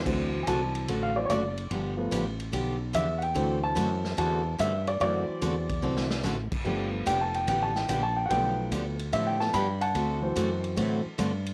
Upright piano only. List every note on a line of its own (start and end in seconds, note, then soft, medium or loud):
0.05 1.14 E3 medium
0.05 1.14 F#3 soft
0.05 1.14 C4 medium
0.43 0.46 G#5 medium
0.48 1.00 A5 medium
1.03 1.16 F5 medium
1.15 1.27 E3 soft
1.15 1.28 F#3 soft
1.15 1.28 C4 medium
1.15 1.28 D5 medium
1.25 1.29 C#5 medium
1.30 1.70 D5 loud
1.97 2.21 F3 medium
1.97 2.21 A3 medium
1.97 2.22 B3 medium
2.95 3.21 E5 loud
3.18 3.20 F#5 medium
3.23 3.62 G5 medium
3.35 4.96 E3 medium
3.35 4.96 F#3 medium
3.35 4.97 C4 medium
3.63 4.16 A5 medium
4.18 4.58 A5 medium
4.60 4.86 E5 loud
4.88 5.00 D5 medium
5.00 5.65 E3 medium
5.00 5.66 F#3 medium
5.00 5.66 C4 medium
5.00 6.21 D5 loud
5.82 6.08 E3 soft
5.82 6.08 F#3 soft
5.82 6.08 C4 medium
6.64 8.26 F3 medium
6.64 8.26 A3 medium
6.64 8.26 B3 medium
7.07 7.20 G5 loud
7.21 7.34 A5 medium
7.35 7.47 G5 medium
7.49 7.61 G5 medium
7.63 7.75 A5 medium
7.76 7.88 G5 medium
7.90 8.03 G5 medium
8.03 8.16 A5 medium
8.16 8.29 G5 medium
8.26 8.95 F3 soft
8.26 8.95 A3 medium
8.26 8.29 F#5 medium
8.30 8.96 B3 medium
8.30 8.70 G5 loud
9.13 9.26 E5 loud
9.27 9.40 G5 medium
9.39 9.52 F3 soft
9.39 9.52 A3 soft
9.39 9.52 B3 medium
9.39 9.53 A5 medium
9.54 9.80 B5 loud
9.81 10.60 F#5 medium
9.81 10.61 A5 medium
10.22 10.74 E3 medium
10.22 10.74 F#3 medium
10.22 10.75 C4 medium
10.77 11.02 E3 soft
10.77 11.02 F#3 soft
10.77 11.02 C4 medium